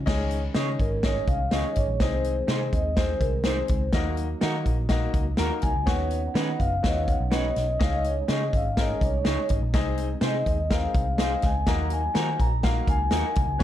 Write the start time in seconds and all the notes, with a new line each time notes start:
0.05 C#2 D#3 G#3 C#4 D#4 G#4 D#5, kick, snare, crash
0.31 closed hi-hat
0.54 C#3 C#4 D#4 G#4 C#5 D#5, snare, closed hi-hat
0.80 G#1 A#4, kick, closed hi-hat
1.03 C#4 D#4 G#4 C#5 D#5, kick, snare, closed hi-hat
1.28 C2 F5, kick, closed hi-hat
1.51 C#2 C#4 D#4 G#4 C#5 D#5, snare, closed hi-hat
1.75 G#1 C#5, kick, closed hi-hat
1.88 A#1
2.00 C2 C4 D#4 G#4 C5 D#5, kick, snare, closed hi-hat
2.24 closed hi-hat
2.48 C3 C4 D#4 G#4 C5 D#5, snare, closed hi-hat
2.72 D#2 D#5, kick, closed hi-hat
2.96 C4 D#4 G#4 C5, kick, snare, closed hi-hat
3.20 C2 A#4, kick, closed hi-hat
3.44 C4 D#4 G#4 C5, snare, closed hi-hat
3.68 C#2, kick, closed hi-hat
3.93 D#2 F#3 A#3 D#4 F#4 D#5, kick, snare, closed hi-hat
4.17 closed hi-hat
4.41 D#3 A#3 D#4 F#4 A#4 D#5, snare, closed hi-hat
4.66 A#1, kick, closed hi-hat
4.89 A#3 D#4 F#4 D#5, kick, snare, closed hi-hat
5.14 C#2, kick, closed hi-hat
5.37 D#2 A#3 D#4 F#4 A#4, snare, closed hi-hat
5.62 C2 G#5, kick, closed hi-hat
5.76 C#2
5.86 D#2 B3 C#4 D#4 F#4 C#5 F#5, kick, snare, closed hi-hat
6.10 closed hi-hat
6.34 D#3 B3 C#4 D#4 F#4 B4 D#5, snare, closed hi-hat
6.59 F#1 F5, kick, closed hi-hat
6.83 D#2 B3 D#4 F#4 C#5 D#5, kick, snare, closed hi-hat
6.97 F5
7.08 F#5, kick, closed hi-hat
7.20 B1
7.31 B3 C#4 D#4 F#4 B4 C#5 D#5, snare, closed hi-hat
7.56 B1 D#5, snare, closed hi-hat
7.79 C#2 G#3 C#4 D#4 G#4 D#5, kick, snare, closed hi-hat
7.94 D#5
8.04 C#5, closed hi-hat
8.28 C#3 C#4 D#4 G#4 C#5 D#5, snare, closed hi-hat
8.43 D#5
8.53 G#1 F5, kick, closed hi-hat
8.77 C#4 D#4 G#4 A#4 D#5, kick, snare, closed hi-hat
9.01 C2 C#5, kick, closed hi-hat
9.24 C#2 C#4 D#4 G#4 C#5 D#5, snare, closed hi-hat
9.49 G#1, kick, closed hi-hat
9.62 A#1
9.72 C2 C4 D#4 G#4 D#5, kick, snare, closed hi-hat
9.97 closed hi-hat
10.21 C3 C4 D#4 G#4 C5 D#5, snare, closed hi-hat
10.46 D#2, kick, closed hi-hat
10.70 C4 D#4 G#4 A#4 F5, kick, snare, closed hi-hat
10.95 C2, kick, closed hi-hat
11.18 C4 D#4 G#4 C5 D#5 F5, snare, closed hi-hat
11.42 C#2 G#5, kick, snare, closed hi-hat
11.66 D#2 F#3 A#3 D#4 F#4 D#5 A#5, kick, snare, closed hi-hat
11.90 G#5, closed hi-hat
12.14 D#3 A#3 D#4 F#4 A#4 C5, snare, closed hi-hat
12.40 A#1 A#5, kick, closed hi-hat
12.63 A#3 D#4 F#4 F5, kick, snare, closed hi-hat
12.88 C#2 G#5, kick, closed hi-hat
13.11 D#2 A#3 D#4 F#4 A#4 D#5, snare, closed hi-hat
13.35 C2, kick, closed hi-hat
13.48 C#2
13.58 D#3 B3 C#4 D#4 F#4 C#5